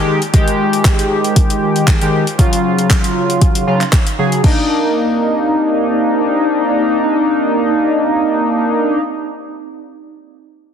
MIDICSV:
0, 0, Header, 1, 4, 480
1, 0, Start_track
1, 0, Key_signature, -3, "minor"
1, 0, Tempo, 512821
1, 315, Time_signature, 4, 2, 24, 8
1, 10052, End_track
2, 0, Start_track
2, 0, Title_t, "Ambient pad"
2, 0, Program_c, 0, 92
2, 0, Note_on_c, 0, 74, 81
2, 73, Note_on_c, 0, 65, 70
2, 500, Note_on_c, 0, 72, 78
2, 793, Note_off_c, 0, 74, 0
2, 2234, Note_off_c, 0, 65, 0
2, 2235, Note_on_c, 0, 63, 78
2, 2532, Note_on_c, 0, 70, 82
2, 3008, Note_off_c, 0, 72, 0
2, 4155, Note_off_c, 0, 63, 0
2, 4155, Note_off_c, 0, 70, 0
2, 4156, Note_on_c, 0, 60, 72
2, 4232, Note_on_c, 0, 67, 75
2, 4305, Note_on_c, 0, 74, 72
2, 4371, Note_on_c, 0, 63, 75
2, 8421, Note_off_c, 0, 60, 0
2, 8497, Note_off_c, 0, 67, 0
2, 8570, Note_off_c, 0, 74, 0
2, 8636, Note_off_c, 0, 63, 0
2, 10052, End_track
3, 0, Start_track
3, 0, Title_t, "Analog polysynth"
3, 0, Program_c, 1, 90
3, 0, Note_on_c, 1, 51, 73
3, 0, Note_on_c, 1, 56, 66
3, 0, Note_on_c, 1, 67, 82
3, 185, Note_off_c, 1, 51, 0
3, 186, Note_off_c, 1, 56, 0
3, 188, Note_off_c, 1, 67, 0
3, 310, Note_on_c, 1, 51, 83
3, 316, Note_on_c, 1, 56, 77
3, 322, Note_on_c, 1, 67, 92
3, 1851, Note_off_c, 1, 51, 0
3, 1854, Note_off_c, 1, 56, 0
3, 1857, Note_off_c, 1, 67, 0
3, 1883, Note_on_c, 1, 51, 72
3, 1886, Note_on_c, 1, 56, 67
3, 1889, Note_on_c, 1, 67, 80
3, 2105, Note_off_c, 1, 51, 0
3, 2106, Note_off_c, 1, 56, 0
3, 2108, Note_off_c, 1, 67, 0
3, 2231, Note_on_c, 1, 49, 83
3, 2237, Note_on_c, 1, 54, 76
3, 2243, Note_on_c, 1, 65, 90
3, 3411, Note_off_c, 1, 49, 0
3, 3414, Note_off_c, 1, 54, 0
3, 3417, Note_off_c, 1, 65, 0
3, 3435, Note_on_c, 1, 49, 75
3, 3437, Note_on_c, 1, 54, 67
3, 3440, Note_on_c, 1, 65, 84
3, 3582, Note_off_c, 1, 49, 0
3, 3583, Note_off_c, 1, 54, 0
3, 3585, Note_off_c, 1, 65, 0
3, 3915, Note_on_c, 1, 49, 73
3, 3918, Note_on_c, 1, 54, 69
3, 3921, Note_on_c, 1, 68, 84
3, 4128, Note_off_c, 1, 49, 0
3, 4130, Note_off_c, 1, 54, 0
3, 4131, Note_off_c, 1, 68, 0
3, 4148, Note_on_c, 1, 62, 83
3, 4157, Note_on_c, 1, 58, 77
3, 4167, Note_on_c, 1, 63, 93
3, 8413, Note_off_c, 1, 62, 0
3, 8422, Note_off_c, 1, 58, 0
3, 8432, Note_off_c, 1, 63, 0
3, 10052, End_track
4, 0, Start_track
4, 0, Title_t, "Drums"
4, 204, Note_on_c, 9, 42, 34
4, 298, Note_off_c, 9, 42, 0
4, 315, Note_on_c, 9, 36, 111
4, 315, Note_on_c, 9, 42, 79
4, 408, Note_off_c, 9, 42, 0
4, 409, Note_off_c, 9, 36, 0
4, 445, Note_on_c, 9, 42, 53
4, 539, Note_off_c, 9, 42, 0
4, 685, Note_on_c, 9, 42, 37
4, 779, Note_off_c, 9, 42, 0
4, 795, Note_on_c, 9, 36, 108
4, 796, Note_on_c, 9, 39, 117
4, 796, Note_on_c, 9, 42, 80
4, 889, Note_off_c, 9, 36, 0
4, 889, Note_off_c, 9, 39, 0
4, 889, Note_off_c, 9, 42, 0
4, 926, Note_on_c, 9, 42, 53
4, 1020, Note_off_c, 9, 42, 0
4, 1165, Note_on_c, 9, 42, 36
4, 1258, Note_off_c, 9, 42, 0
4, 1275, Note_on_c, 9, 42, 76
4, 1276, Note_on_c, 9, 36, 107
4, 1369, Note_off_c, 9, 36, 0
4, 1369, Note_off_c, 9, 42, 0
4, 1405, Note_on_c, 9, 42, 51
4, 1499, Note_off_c, 9, 42, 0
4, 1645, Note_on_c, 9, 42, 37
4, 1739, Note_off_c, 9, 42, 0
4, 1755, Note_on_c, 9, 36, 110
4, 1756, Note_on_c, 9, 39, 114
4, 1756, Note_on_c, 9, 42, 80
4, 1849, Note_off_c, 9, 36, 0
4, 1850, Note_off_c, 9, 39, 0
4, 1850, Note_off_c, 9, 42, 0
4, 1886, Note_on_c, 9, 42, 53
4, 1979, Note_off_c, 9, 42, 0
4, 2127, Note_on_c, 9, 42, 34
4, 2220, Note_off_c, 9, 42, 0
4, 2236, Note_on_c, 9, 36, 110
4, 2237, Note_on_c, 9, 42, 80
4, 2329, Note_off_c, 9, 36, 0
4, 2330, Note_off_c, 9, 42, 0
4, 2366, Note_on_c, 9, 42, 54
4, 2460, Note_off_c, 9, 42, 0
4, 2607, Note_on_c, 9, 42, 39
4, 2700, Note_off_c, 9, 42, 0
4, 2716, Note_on_c, 9, 36, 109
4, 2717, Note_on_c, 9, 39, 115
4, 2717, Note_on_c, 9, 42, 80
4, 2810, Note_off_c, 9, 36, 0
4, 2810, Note_off_c, 9, 42, 0
4, 2811, Note_off_c, 9, 39, 0
4, 2847, Note_on_c, 9, 42, 54
4, 2940, Note_off_c, 9, 42, 0
4, 3087, Note_on_c, 9, 42, 37
4, 3180, Note_off_c, 9, 42, 0
4, 3196, Note_on_c, 9, 36, 112
4, 3196, Note_on_c, 9, 42, 81
4, 3290, Note_off_c, 9, 36, 0
4, 3290, Note_off_c, 9, 42, 0
4, 3325, Note_on_c, 9, 42, 52
4, 3419, Note_off_c, 9, 42, 0
4, 3566, Note_on_c, 9, 39, 36
4, 3566, Note_on_c, 9, 42, 37
4, 3659, Note_off_c, 9, 39, 0
4, 3659, Note_off_c, 9, 42, 0
4, 3676, Note_on_c, 9, 36, 108
4, 3676, Note_on_c, 9, 39, 114
4, 3676, Note_on_c, 9, 42, 79
4, 3769, Note_off_c, 9, 39, 0
4, 3769, Note_off_c, 9, 42, 0
4, 3770, Note_off_c, 9, 36, 0
4, 3805, Note_on_c, 9, 42, 52
4, 3899, Note_off_c, 9, 42, 0
4, 4045, Note_on_c, 9, 42, 36
4, 4139, Note_off_c, 9, 42, 0
4, 4156, Note_on_c, 9, 36, 108
4, 4156, Note_on_c, 9, 49, 84
4, 4249, Note_off_c, 9, 36, 0
4, 4249, Note_off_c, 9, 49, 0
4, 10052, End_track
0, 0, End_of_file